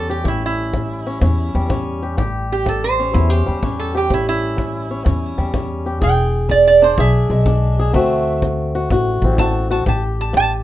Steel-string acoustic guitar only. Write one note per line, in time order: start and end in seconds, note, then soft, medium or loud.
0.00 0.22 A2 medium
0.00 1.54 G3 medium
0.00 0.25 C#4 medium
0.10 0.27 G4 medium
0.24 0.70 A2 medium
0.24 1.06 C#4 medium
0.73 1.19 A2 medium
1.07 1.22 C#4 medium
1.21 1.67 A2 medium
1.21 1.70 C#4 medium
1.55 3.45 G3 medium
1.69 2.15 A2 medium
1.69 2.21 C#4 medium
2.03 2.18 G4 medium
2.17 2.63 A2 medium
2.17 3.13 G4 medium
2.66 3.11 A2 medium
2.99 3.62 C#4 medium
3.13 3.59 A2 medium
3.13 3.30 E4 medium
3.30 3.94 G4 medium
3.46 5.37 G3 medium
3.63 4.07 A2 medium
3.63 4.09 C#4 medium
3.95 4.09 G4 medium
4.10 4.55 A2 medium
4.10 4.89 C#4 medium
4.57 5.03 A2 medium
4.91 5.04 C#4 medium
5.05 5.50 A2 medium
5.05 5.53 C#4 medium
5.38 6.02 G3 medium
5.54 5.99 A2 medium
5.54 6.00 C#4 medium
5.86 6.00 G4 medium
6.01 6.46 E2 medium
6.01 6.97 G#4 medium
6.49 6.94 E2 medium
6.82 7.46 D4 medium
6.98 7.43 E2 medium
6.98 7.78 G#4 medium
7.31 7.92 G#3 medium
7.46 7.91 E2 medium
7.46 7.92 D4 medium
7.79 7.93 G#4 medium
7.93 8.38 D3 medium
7.93 9.90 A3 medium
7.93 9.22 C4 medium
7.93 8.74 F#4 medium
8.43 8.87 D3 medium
8.75 8.90 F#4 medium
8.91 9.35 D3 medium
8.91 9.39 F#4 medium
9.24 9.85 C4 medium
9.39 9.83 D3 medium
9.39 9.69 F#4 medium
9.71 9.84 F#4 medium
9.86 10.31 A2 medium
9.86 10.63 G4 medium
10.33 10.63 A2 medium